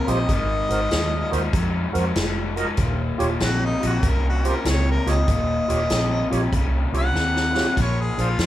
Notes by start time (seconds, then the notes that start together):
Already playing: A#4
0.07 A#1 D#2 C3 F4 G4 C5 D#5, closed hi-hat
0.28 G#1 G#2 D#3, kick, closed hi-hat
0.34 D#5
0.69 G#1 G#2 D#3 F#4 A#4 C5, closed hi-hat
0.91 D#2 G#2 F3, snare, closed hi-hat
1.31 D#2 G#2 F3 F#4 A#4 C5, closed hi-hat
1.53 F2 G#2 F#3, kick, closed hi-hat
1.93 F2 G#2 F#3 F#4 A#4 C5, closed hi-hat
2.15 F1 G#2 F3, snare, closed hi-hat
2.56 G#2 F3 F#4 A#4 D#5, closed hi-hat
2.77 D#1 D#2 A#2, kick, closed hi-hat
3.18 D#1 D#2 A#2 F4 G4 C#5, closed hi-hat
3.40 A#1 D#2 C3 F#4, snare, closed hi-hat
3.65 D#4
3.81 A#1 D#2 C3 F4 G4 D#5, closed hi-hat
3.86 F#4
4.02 C2 D#2 C#3, kick, closed hi-hat
4.08 A#4
4.29 F#4
4.43 D#2 C#3 F4 G4 C5, closed hi-hat
4.49 A#4
4.65 C#2 D#2 C3, snare, closed hi-hat
4.69 C#5
4.91 A#4
5.06 C#2 D#2 C3 F4 G4 C#5 D#5, snare, closed hi-hat
5.27 D#1 D#2 A#2, kick, closed hi-hat
5.31 D#5
5.68 D#1 D#2 A#2 F4 G4 C#5, closed hi-hat
5.90 A#1 D#2 C3, snare, closed hi-hat
6.30 A#1 D#2 C3 F4 G4 C#5, closed hi-hat
6.52 C2 D#2 C#3, kick, closed hi-hat
6.93 C2 D#2 C#3 F4 G4 C#5, closed hi-hat
6.99 F#5
7.13 D#2 C3, snare
7.36 snare
7.55 D#2 C3 F4 G4 C#5, snare
7.77 A#1 A#2 F3, kick, closed hi-hat, splash
7.81 C#5
8.01 G#4
8.17 A#1 A#2 F3 D4 F4 G#4 C5, closed hi-hat
8.38 F2 A#2 G3, snare, closed hi-hat